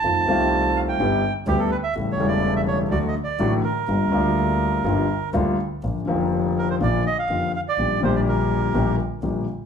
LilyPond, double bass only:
\new Staff \with { instrumentName = "Double bass" } { \clef bass \time 4/4 \key g \minor \tempo 4 = 124 f,8 c,4. g,,8 r8 d,8 r8 | a,,8 e,,4. d,8 r8 a,,8 r8 | g,,8 d,4. g,,8 r8 d,8 r8 | \key bes \major bes,,8 f,,4. bes,,8 r8 f,,8 r8 |
bes,,8 bes,,4. bes,,8 r8 bes,,8 r8 | }